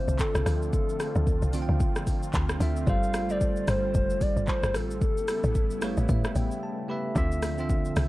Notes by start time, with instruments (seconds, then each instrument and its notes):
Already playing: tine electric piano D3 C4 F4 E5 F5, analog synth pad F3 A3 C4 D4 F4, soft synth lead C5
0.08 log drum bass C2, shaker
0.19 soft synth lead A4, kick, clap, shaker
0.35 log drum bass C2, cross-stick, shaker
0.46 log drum bass D2, soft synth lead A4, cross-stick, open hi-hat, shaker
0.62 shaker
0.73 kick, shaker
0.89 shaker
1.00 cross-stick, open hi-hat, shaker
1.15 log drum bass D2, shaker
1.27 kick, shaker
1.42 log drum bass C2, shaker
1.53 tine electric piano D3 C4 F4 F5, open hi-hat, shaker
1.62 tine electric piano G5
1.69 log drum bass D2
1.80 kick, shaker
1.96 cross-stick, shaker
2.07 kick, open hi-hat, shaker
2.23 shaker
2.33 log drum bass D2, kick, clap, shaker
2.49 cross-stick, shaker
2.60 log drum bass D2, tine electric piano D3 C4 F4 E5, open hi-hat, shaker
2.77 shaker
2.87 log drum bass G1, analog synth pad D3 G3, tine electric piano G3 F4 A4 C5, soft synth lead F5, kick, shaker
3.03 shaker
3.14 cross-stick, open hi-hat, shaker
3.29 tine electric piano G3 F4 A4 C5, soft synth lead D5, shaker
3.41 kick, shaker
3.56 shaker
3.67 log drum bass G1, soft synth lead C5, cross-stick, open hi-hat, shaker
3.94 log drum bass F1, kick, shaker
4.10 shaker
4.21 soft synth lead D5, kick, open hi-hat, shaker
4.37 log drum bass G1, shaker
4.48 soft synth lead C5, kick, clap, shaker
4.64 log drum bass G1, cross-stick, shaker
4.75 log drum bass A1, soft synth lead A4, cross-stick, open hi-hat, shaker
4.91 shaker
5.01 analog synth pad C#3 A3 B3 E4, kick, shaker
5.17 shaker
5.28 cross-stick, open hi-hat, shaker
5.44 log drum bass A1, shaker
5.55 kick, shaker
5.71 log drum bass G1, shaker
5.81 tine electric piano A3 G4 B4 C#5 F5, cross-stick, open hi-hat, shaker
5.97 log drum bass A1, shaker
6.09 log drum bass A2, tine electric piano E5, kick, shaker
6.24 cross-stick, shaker
6.35 log drum bass A1, tine electric piano G5, open hi-hat, shaker
6.51 shaker
6.63 tine electric piano A5
6.88 tine electric piano A3 G4 B4 E5 B5
7.15 log drum bass D2, tine electric piano D3 C4 F4 E5, analog synth pad D3 F3 C4 E5, kick, shaker
7.32 shaker
7.42 cross-stick, open hi-hat, shaker
7.58 tine electric piano D3 C4 F4 E5, shaker
7.69 kick, shaker
7.85 shaker
7.96 log drum bass C2, cross-stick, open hi-hat, shaker